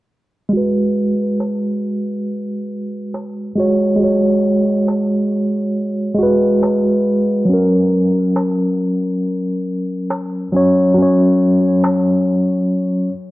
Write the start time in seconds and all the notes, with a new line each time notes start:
0.49 G#3
0.53 F#4
0.57 B4
1.40 darbuka tek
3.14 darbuka tek
3.55 G#3 F#4
3.60 C#5
3.96 G#3 F#4
4.04 C#5
4.88 darbuka tek
6.14 G#3
6.18 F#4
6.23 B4
6.63 darbuka tek
7.45 F#3
7.49 C#4
7.53 A#4
8.36 darbuka tek
10.10 darbuka tek
10.52 F#3 C#4
10.56 C#5
10.94 F#3
10.98 C#4
11.02 C#5
11.84 darbuka tek